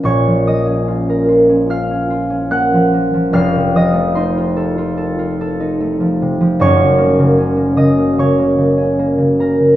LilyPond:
<<
  \new Staff \with { instrumentName = "Harp" } { \time 4/4 \key bes \minor \tempo 4 = 74 <bes' des'' des'''>8 <ees'' ees'''>4. <f'' f'''>4 <ges'' ges'''>4 | <f'' f'''>8 <ees'' ees'''>8 <c'' c'''>2. | <des'' des'''>4. <ees'' ees'''>8 <des'' des'''>4. <bes' bes''>8 | }
  \new Staff \with { instrumentName = "Harp" } { \time 4/4 \key bes \minor <bes,, bes, f bes des' f'>16 f16 bes16 des'16 f'16 bes'16 f'16 des'16 f'16 des'16 f'16 des'16 bes16 f16 bes16 f16 | <f,, f,>16 c16 f16 a16 ees'16 f'16 a'16 f'16 a'16 f'16 a'16 ees'16 a16 f16 c16 f16 | <ges,, ges,>16 des16 bes16 des16 des'16 bes16 des16 bes16 des16 bes16 des16 des'16 bes16 des16 bes16 des16 | }
>>